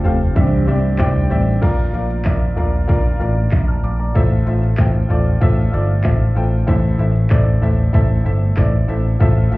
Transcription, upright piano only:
Already playing: C3 G4 A4 C5 F5
0.03 G4 A4 C5 F5
0.35 G2 G4 C5 D5 E5
0.66 G4 C5 D5 E5
0.98 G4 C5 D5 G5
1.29 G4 C5 D5 E5
1.61 A#2 F3 F4 A#4 D5 F5
1.93 F4 A#4 D5 F5
2.24 F4 A#4 D5 E5
2.56 F4 A#4 D5 F5
2.88 F4 A#4 D5 F5
3.19 F4 A#4 D5 F5
3.68 A5 F6
3.84 F5 D6
3.99 D5 A#5
4.14 A2 A3 F4 A4 C5 E5
4.46 F4 A4 C5 E5
4.78 F4 A4 C5 G5
5.09 F4 A4 C5 D5
5.41 F4 A4 C5 E5
5.72 F4 A4 C5 D5
6.03 F4 A4 C5 E5
6.35 F4 A4 C5 G5
6.67 A2 E3 E4 A4 C5 E5
6.98 E4 A4 C5 E5
7.30 E4 A4 C5 D5
7.61 E4 A4 C5 E5
7.93 E4 A4 C5 E5
8.24 E4 A4 C5 E5
8.56 E4 A4 C5 D5
8.88 E4 A4 C5 E5
9.20 A2 A3 F4 A4 C5 E5
9.52 F4 A4 C5 E5

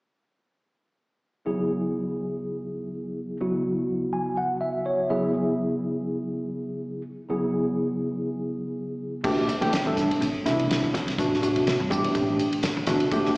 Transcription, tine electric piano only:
1.45 D2 C#3 F#3 B3 E4 G#4
3.41 D2 C#3 F#3 B3 E4 F#4
4.13 G#5
4.37 F#5
4.61 E5
4.86 C#5
5.10 C#3 F#3 B3 E4 G#4 E5
7.29 C#3 F#3 B3 E4 G#4
9.24 B2 E3 A3 D4 G4
9.61 B2 E3 A3 D4 G4
9.86 B2 E3 A3 D4 A4
10.45 B2 E3 A3 D4 E4
11.19 B2 E3 A3 D4 F#4
11.43 B2 E3 A3 D4 F#4
11.90 B2 E3 A3 D4 G4
12.87 B2 E3 A3 D4 F#4
13.12 B2 E3 A3 D4 G4

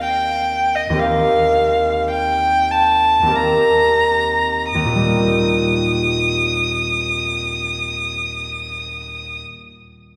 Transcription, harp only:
Already playing: D#2 C4 G4 A#4 F5
0.90 D#2 C4
0.95 G4 A#4
1.00 F5
3.22 D#2 C4
3.28 G4 A#4
3.33 F5
4.75 D#2
4.85 A#2
4.95 G3
5.05 A#3
5.16 C4
5.26 D#4

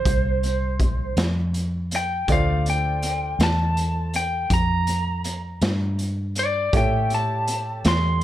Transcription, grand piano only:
Already playing: F4 A4 C5 E6
2.29 A3 F4 C5 D5
6.73 G4 A4 C#5 E5

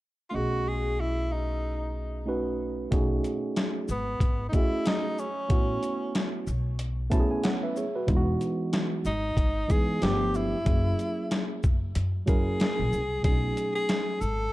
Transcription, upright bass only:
0.35 B1
2.92 B1
3.89 G#1
4.21 G#1
5.50 A1
6.47 B1
8.08 E1
9.05 G#1
9.37 G#1
10.02 G1
10.66 F#1
11.64 F#1
11.96 F#2
12.28 F#1
12.80 A#1
12.93 C2
13.24 B1
14.21 G#1

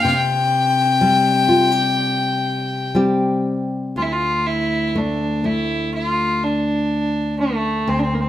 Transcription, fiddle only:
0.02 G5
0.08 F5
0.15 G5
3.97 F4
4.02 E4
4.12 F4
4.47 E4
4.88 E4
4.98 D4
5.45 E4
5.94 F4
6.43 D4
7.39 A3
7.89 C4
7.99 C4 D4
8.14 A#3
8.21 C4

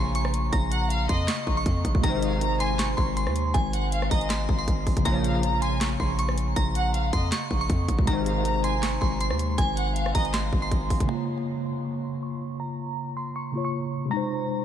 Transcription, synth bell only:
Already playing: C6
0.15 C#6
0.52 A#5
1.09 C6
1.28 C#6
1.57 C#6
2.03 A#5
2.60 C6
2.79 C#6
2.97 C6
3.17 C6
3.54 G#5
4.11 A#5
4.30 C6
4.59 C6
5.05 A#5
5.62 C6
5.81 C#6
6.00 C6
6.19 C#6
6.56 A#5
7.13 C6
7.32 C#6
7.61 C#6
8.07 A#5
8.64 C6
8.83 C#6
9.01 C6
9.21 C6
9.58 G#5
10.15 A#5
10.34 C6
10.62 C6
11.09 A#5
11.66 C6
11.85 C#6
12.04 C6
12.23 C#6
12.60 A#5
13.17 C6
13.36 C#6
13.65 C#6
14.11 A#5

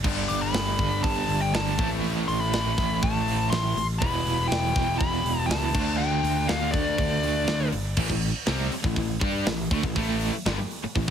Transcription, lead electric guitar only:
0.28 D6
0.42 B5
1.03 A5
1.41 G5
1.55 A5
2.28 C6
2.40 B5
3.03 A5
3.50 C6
3.99 B5
4.48 G5
4.98 B5
5.40 A5
5.46 A5
5.97 G5
6.48 F5
6.72 D5

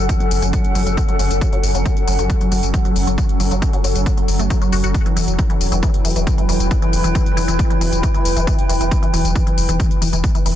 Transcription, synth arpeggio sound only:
0.09 F#3
0.20 F#3
0.43 F#3
0.54 F#3
0.75 F#3
0.87 F#3
1.09 F#3
1.20 F#3
1.42 F#3
1.53 F#3
1.75 F#3
1.86 F#3
2.08 F#3
2.19 F#3
2.41 F#3
2.52 F#3
2.74 F#3
2.85 F#3
3.07 F#3
3.18 F#3
3.40 F#3
3.51 F#3
3.73 F#3
3.84 F#3
4.06 F#3
4.17 F#3
4.39 A3
4.50 F#3
4.62 F#3
4.72 F#4
4.84 F#4
5.06 E3
5.16 E3
5.39 E3
5.50 E3
5.72 E3
5.83 E3
6.05 E3
6.16 E3
6.38 E3
6.49 E3
6.71 E3
6.82 E3
7.04 E3
7.15 E3
7.37 E3
7.48 E3
7.70 E3
7.81 E3
8.03 E3
8.14 E3
8.37 E3
8.47 E3
8.69 E3
8.81 E3
9.03 E3
9.14 E3
9.36 E3
9.47 E3
9.69 E3
9.80 E3
10.02 E3
10.13 E3
10.35 E3
10.46 E3

